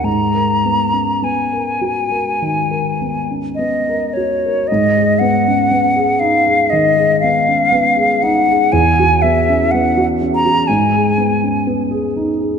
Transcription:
<<
  \new Staff \with { instrumentName = "Flute" } { \time 4/4 \key gis \minor \tempo 4 = 59 ais''4 gis''2 dis''8 cis''8 | dis''8 fis''4 eis''8 dis''8 eis''4 fis''8 | gis''8 e''8 \tuplet 3/2 { fis''4 ais''8 } gis''4 r4 | }
  \new Staff \with { instrumentName = "Grand piano" } { \time 4/4 \key gis \minor gis,16 ais'16 b16 cis'16 b16 ais'16 fis'16 ais'16 dis16 ais'16 b16 cis'16 b16 ais'16 fis'16 ais'16 | gis,16 gis'16 b16 cis'16 b16 gis'16 dis'16 gis'16 dis16 gis'16 b16 cis'16 b16 gis'16 dis'16 gis'16 | e,16 fis'16 b16 cis'16 b16 fis'16 cis'16 fis'16 gis,16 gis'16 b16 cis'16 b16 gis'16 dis'16 gis'16 | }
>>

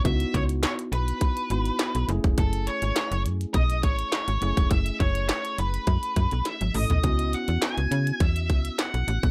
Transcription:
<<
  \new Staff \with { instrumentName = "Lead electric guitar" } { \time 4/4 \key cis \minor \tempo 4 = 103 e''8 cis''8 cis''8 b'2 r8 | a'8 cis''4 r8 dis''8 cis''4. | e''8 cis''8 cis''8 b'4. e''8 dis''8~ | dis''8 fis''8 gis''4 e''4 fis''4 | }
  \new Staff \with { instrumentName = "Tine electric piano" } { \time 4/4 \key cis \minor <b dis' e' fis'>2~ <b dis' e' fis'>8 <b dis' e' fis'>4 <a cis' e' gis'>8~ | <a cis' e' gis'>2.~ <a cis' e' gis'>8 <a cis' e' gis'>8~ | <a cis' e' gis'>2.~ <a cis' e' gis'>8 <a cis' e' a'>8 | <b cis' e' fis'>1 | }
  \new Staff \with { instrumentName = "FM bass" } { \clef bass \time 4/4 \key cis \minor cis,8 cis,8. r16 b,,8 r8 gis,,8 r16 b,,16 fis,,16 e,,16 | fis,,8. gis,,16 r16 fis,,16 fis,8 b,,8 a,,8 r16 gis,,16 fis,,16 e,,16 | fis,,8 fis,,8. r16 fis,,8 fis,16 r16 fis,16 b,,16 r16 gis,,16 a,,16 b,,16 | cis,8. e,16 r16 cis,16 cis8 e,8 cis,8 r16 b,,16 a,,16 b,,16 | }
  \new DrumStaff \with { instrumentName = "Drums" } \drummode { \time 4/4 <hh bd>16 hh16 <hh bd>16 hh16 <hc hh sn>16 hh16 hh16 hh16 <hh bd>16 hh16 hh16 hh16 <hc hh sn>16 hh16 hh16 <hh bd>16 | <hh bd>16 hh16 hh16 hh16 <hc hh sn>16 hh16 hh16 hh16 <hh bd>16 hh16 <hh bd>16 hh16 <hc hh sn>16 hh16 hh16 <hh bd>16 | <hh bd>16 hh16 <hh bd>16 hh16 <hc hh sn>16 hh16 hh16 hh16 <hh bd>16 hh16 <hh bd>16 hh16 <hh sn>16 <hh tommh>16 <hho toml>16 <hh tomfh>16 | <hh bd>16 hh16 hh16 hh16 <hc hh sn>16 hh16 hh16 hh16 <hh bd>16 hh16 <hh bd>16 hh16 <hc hh sn>16 hh16 hh16 <hh bd>16 | }
>>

